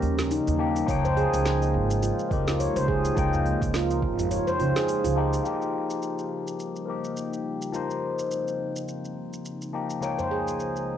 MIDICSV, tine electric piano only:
0, 0, Header, 1, 2, 480
1, 0, Start_track
1, 0, Tempo, 571429
1, 739, Time_signature, 4, 2, 24, 8
1, 9220, End_track
2, 0, Start_track
2, 0, Title_t, "Tine electric piano"
2, 0, Program_c, 0, 4
2, 0, Control_c, 0, 64, 127
2, 0, Note_on_c, 0, 53, 84
2, 0, Note_on_c, 0, 58, 77
2, 0, Note_on_c, 0, 63, 81
2, 0, Note_on_c, 0, 84, 90
2, 467, Note_off_c, 0, 53, 0
2, 472, Note_off_c, 0, 58, 0
2, 478, Note_off_c, 0, 63, 0
2, 483, Note_off_c, 0, 84, 0
2, 489, Note_on_c, 0, 53, 90
2, 496, Note_on_c, 0, 58, 84
2, 501, Note_on_c, 0, 63, 81
2, 506, Note_on_c, 0, 67, 101
2, 710, Note_off_c, 0, 53, 0
2, 713, Note_off_c, 0, 58, 0
2, 716, Note_off_c, 0, 63, 0
2, 718, Note_off_c, 0, 67, 0
2, 726, Note_on_c, 0, 53, 101
2, 736, Note_on_c, 0, 58, 82
2, 746, Note_on_c, 0, 63, 89
2, 750, Control_c, 0, 64, 0
2, 759, Note_on_c, 0, 79, 106
2, 919, Control_c, 0, 64, 127
2, 1908, Note_off_c, 0, 53, 0
2, 1913, Note_off_c, 0, 58, 0
2, 1918, Note_off_c, 0, 63, 0
2, 1925, Note_off_c, 0, 79, 0
2, 1926, Note_on_c, 0, 53, 72
2, 1941, Note_on_c, 0, 58, 70
2, 1950, Note_on_c, 0, 63, 69
2, 1961, Note_on_c, 0, 67, 84
2, 2628, Note_off_c, 0, 53, 0
2, 2636, Note_off_c, 0, 58, 0
2, 2640, Note_off_c, 0, 63, 0
2, 2643, Note_on_c, 0, 53, 86
2, 2646, Note_off_c, 0, 67, 0
2, 2653, Note_on_c, 0, 58, 79
2, 2666, Note_on_c, 0, 63, 82
2, 2677, Note_on_c, 0, 79, 96
2, 4307, Note_off_c, 0, 53, 0
2, 4312, Note_off_c, 0, 58, 0
2, 4318, Note_off_c, 0, 63, 0
2, 4324, Note_off_c, 0, 79, 0
2, 4334, Note_on_c, 0, 53, 92
2, 4339, Note_on_c, 0, 58, 81
2, 4344, Note_on_c, 0, 63, 82
2, 4350, Note_on_c, 0, 67, 97
2, 4549, Note_off_c, 0, 53, 0
2, 4554, Note_off_c, 0, 58, 0
2, 4557, Note_off_c, 0, 63, 0
2, 4559, Note_on_c, 0, 53, 74
2, 4560, Note_off_c, 0, 67, 0
2, 4572, Note_on_c, 0, 58, 73
2, 4582, Note_on_c, 0, 63, 67
2, 4589, Control_c, 0, 64, 0
2, 4593, Note_on_c, 0, 67, 85
2, 4745, Control_c, 0, 64, 127
2, 5745, Note_off_c, 0, 53, 0
2, 5751, Note_off_c, 0, 58, 0
2, 5756, Note_off_c, 0, 63, 0
2, 5759, Note_on_c, 0, 53, 67
2, 5762, Note_off_c, 0, 67, 0
2, 5773, Note_on_c, 0, 58, 59
2, 5783, Note_on_c, 0, 63, 54
2, 5795, Note_on_c, 0, 67, 70
2, 6465, Note_off_c, 0, 53, 0
2, 6472, Note_off_c, 0, 58, 0
2, 6477, Note_off_c, 0, 63, 0
2, 6483, Note_off_c, 0, 67, 0
2, 6485, Note_on_c, 0, 53, 74
2, 6495, Note_on_c, 0, 58, 65
2, 6506, Note_on_c, 0, 63, 72
2, 6517, Note_on_c, 0, 72, 82
2, 8147, Note_off_c, 0, 53, 0
2, 8153, Note_off_c, 0, 58, 0
2, 8158, Note_off_c, 0, 63, 0
2, 8164, Note_off_c, 0, 72, 0
2, 8171, Note_on_c, 0, 53, 80
2, 8176, Note_on_c, 0, 58, 68
2, 8183, Note_on_c, 0, 63, 70
2, 8188, Note_on_c, 0, 67, 84
2, 8391, Note_off_c, 0, 53, 0
2, 8393, Note_off_c, 0, 58, 0
2, 8396, Note_off_c, 0, 63, 0
2, 8399, Note_off_c, 0, 67, 0
2, 8400, Note_on_c, 0, 37, 79
2, 8408, Note_on_c, 0, 53, 75
2, 8417, Note_on_c, 0, 58, 72
2, 8427, Note_on_c, 0, 63, 73
2, 8429, Control_c, 0, 64, 0
2, 8435, Note_on_c, 0, 79, 86
2, 8578, Control_c, 0, 64, 127
2, 9220, Note_off_c, 0, 37, 0
2, 9220, Note_off_c, 0, 53, 0
2, 9220, Note_off_c, 0, 58, 0
2, 9220, Note_off_c, 0, 63, 0
2, 9220, Note_off_c, 0, 79, 0
2, 9220, End_track
0, 0, End_of_file